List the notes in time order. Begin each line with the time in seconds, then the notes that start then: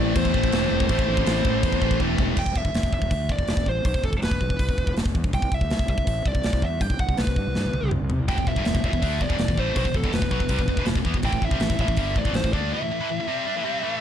Already playing: A1 A2 E3 A3 C4 E4 C5 D5
0.16 E2 C5, kick, crash
0.25 kick
0.33 A1 A2 E3 A3, kick
0.44 kick
0.52 E1 A2 E3 A3, snare, crash
0.71 E1
0.80 kick
0.89 A1 A2 E3 A3 C4 E4, kick, crash
0.99 kick
1.08 A1
1.17 kick
1.26 A1, snare, crash
1.45 A1, kick
1.63 E2, kick, crash
1.72 kick
1.81 A1 A2 E3 A3, kick
1.91 kick
1.99 E1 A2 E3 A3, kick
2.18 E1, kick
2.37 E1 G5, kick, crash
2.46 E1, kick
2.56 E1 E5, kick
2.65 G1, kick
2.74 E1, snare, open hi-hat
2.83 E1, kick
2.92 E1 E5, kick
3.02 E1, kick
3.11 D2, kick, open hi-hat
3.29 E1 D5, kick
3.38 E1, kick
3.48 E1 D5, snare, open hi-hat
3.57 E1, kick
3.66 A1 C5, kick
3.85 B1 C5, kick, open hi-hat
3.94 E1, kick
4.03 E1 A4, kick
4.13 E1, kick
4.22 E1 B4, snare, open hi-hat
4.31 E1, kick
4.41 B1, kick
4.50 E1, kick
4.59 C2, kick, open hi-hat
4.69 E1, kick
4.78 E1, kick
4.87 E1, kick
4.97 E1, snare, open hi-hat
5.05 E1, kick
5.15 E2, kick
5.24 E1, kick
5.33 C2 G5, kick, open hi-hat
5.42 C2, kick
5.52 C2 E5, kick
5.61 D2, kick
5.70 C2, snare, open hi-hat
5.79 C2, kick
5.88 C2 E5, kick
5.98 C2, kick
6.07 A1, kick, open hi-hat
6.25 C2 D5, kick
6.35 C2, kick
6.43 C2 D5, snare, open hi-hat
6.53 C2, kick
6.62 E2 E5, kick
6.81 G2 G5, kick, open hi-hat
6.90 C2, kick
6.99 C2 F#5, kick
7.08 C2, kick
7.17 C2 B4, snare, open hi-hat
7.27 C2, kick
7.36 G2, kick
7.47 C2
7.55 G2, snare
7.65 C2
7.73 C2, high tom
7.83 C2
7.91 C2, mid tom
8.02 C2
8.10 C3, floor tom
8.20 C2
8.28 E1 E2 B2 G5, kick, open hi-hat
8.38 E1 E2 B2, kick
8.47 E1 E2 B2 E5, kick
8.56 G1 G2 D3, kick
8.65 E1 E2 B2, snare, open hi-hat
8.74 E1 E2 B2, kick
8.84 E1 E2 B2 E5, kick
8.93 E1 E2 B2, kick
9.02 D2 D3 A3 D4, kick, open hi-hat
9.21 E1 E2 B2 D5, kick
9.29 E1 E2 B2, kick
9.39 E1 E2 B2 D5, snare, open hi-hat
9.48 E1 E2 B2, kick
9.57 A1 A2 E3 A3 C5, kick
9.76 B1 B2 F#3 C5, kick, open hi-hat
9.85 E1 E2 B2, kick
9.94 E1 E2 B2 A4, kick
10.03 E1 E2 B2, kick
10.12 E1 E2 B2 B4, snare, open hi-hat
10.22 E1 E2 B2, kick
10.31 B1 B2 F#3, kick
10.40 E1 E2 B2, kick
10.49 C2 C3 G3, kick, open hi-hat
10.59 E1 E2 B2, kick
10.67 E1 E2 B2, kick
10.77 E1 E2 B2, kick
10.86 E1 E2 B2, snare, open hi-hat
10.95 E1 E2 B2, kick
11.05 E2 E3 B3, kick
11.14 E1 E2 B2, kick
11.23 A1 A2 E3 G5, kick, open hi-hat
11.33 A1 A2 E3, kick
11.42 A1 A2 E3 E5, kick
11.51 C2 C3 G3, kick
11.60 A1 A2 E3, snare, open hi-hat
11.70 A1 A2 E3, kick
11.79 A1 A2 E3 E5, kick
11.88 A1 A2 E3, kick
11.97 G1 G2 D3 G3, kick, open hi-hat
12.16 A1 A2 E3 D5, kick
12.25 A1 A2 E3, kick
12.33 A1 A2 E3 C5, snare, open hi-hat
12.44 A1 A2 E3, kick
12.53 D2 D3 A3 D4 D5, kick
12.73 E3 B3 E5
12.82 A2 E3
12.91 A2 E3
13.01 A2 E3
13.10 A2 E3
13.20 A2 E3
13.27 C3 G3 C4
13.46 G3 D4
13.55 A2 E3
13.64 C3 G3 C4
13.83 A2 E3 A3